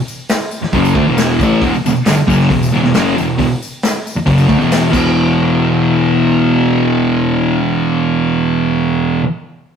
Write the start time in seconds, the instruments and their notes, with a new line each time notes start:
0.08 tambourine
0.29 snare, open hi-hat, tambourine
0.51 tambourine
0.62 muted distorted electric guitar stroke, muted picked electric bass stroke, snare
0.72 picked electric bass F#1, distorted electric guitar F#2 C#3 F#3, kick, open hi-hat
0.85 tambourine
0.95 picked electric bass D2, distorted electric guitar D3 A3, kick
1.07 picked electric bass E1, distorted electric guitar E2 B2 E3
1.17 snare, open hi-hat, tambourine
1.40 picked electric bass A1, distorted electric guitar A2 E3 A3, kick, tambourine
1.61 picked electric bass E1, distorted electric guitar E2 B2, kick, open hi-hat, tambourine
1.74 muted picked electric bass stroke, muted distorted electric guitar stroke, tambourine
1.85 picked electric bass E1, distorted electric guitar E2 B2, tambourine
1.96 muted picked electric bass stroke, muted distorted electric guitar stroke, tambourine
2.05 picked electric bass G1, distorted electric guitar G2 D3, snare, open hi-hat, tambourine
2.18 muted distorted electric guitar stroke, muted picked electric bass stroke, tambourine
2.27 picked electric bass F#1, distorted electric guitar F#2 C#3 F#3, kick, tambourine
2.40 snare
2.50 picked electric bass E1, distorted electric guitar E2 B2, kick, open hi-hat
2.63 tambourine
2.71 picked electric bass E1, distorted electric guitar E2 B2
2.83 picked electric bass E1, distorted electric guitar E2 B2, snare
2.94 picked electric bass F#1, distorted electric guitar F#2 C#3 F#3, snare, open hi-hat, tambourine
3.17 picked electric bass E1, distorted electric guitar E2 B2, tambourine
3.38 picked electric bass E1, distorted electric guitar E2 B2, kick, open hi-hat, tambourine
3.52 tambourine
3.62 tambourine
3.83 snare, open hi-hat, tambourine
3.95 tambourine
4.07 tambourine
4.16 muted picked electric bass stroke, muted distorted electric guitar stroke
4.26 picked electric bass F#1, distorted electric guitar F#2 C#3 F#3, kick, open hi-hat, tambourine
4.38 tambourine
4.47 picked electric bass D2, distorted electric guitar D3 A3, kick, tambourine
4.58 picked electric bass E1, distorted electric guitar E2 B2 E3, tambourine
4.71 snare, open hi-hat, tambourine
4.91 picked electric bass E1, distorted electric guitar E2 B2, kick, crash, tambourine
4.95 distorted electric guitar E3